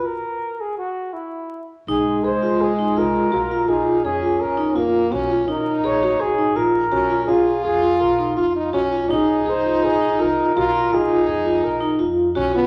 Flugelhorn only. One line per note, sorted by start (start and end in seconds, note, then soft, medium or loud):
0.06 0.62 A#4 medium
0.60 0.78 G#4 medium
0.78 1.15 F#4 medium
1.13 1.69 E4 medium
1.90 2.26 G#4 medium
2.24 2.62 C5 medium
2.61 3.00 G#4 medium
2.98 3.70 A#4 medium
3.69 4.04 G#4 medium
4.05 4.42 G#4 medium
4.41 4.76 A#4 medium
5.49 5.87 A#4 medium
5.85 6.22 C#5 loud
6.21 6.58 G#4 medium
6.56 7.25 A#4 medium
7.25 7.60 G#4 medium
7.65 8.02 G#4 medium
8.00 8.37 A#4 medium
9.12 9.51 G#4 medium
9.49 9.86 C5 medium
9.84 10.22 G#4 medium
10.20 10.95 A#4 medium
10.94 11.27 G#4 medium
11.28 11.66 G#4 medium
11.64 12.00 A#4 medium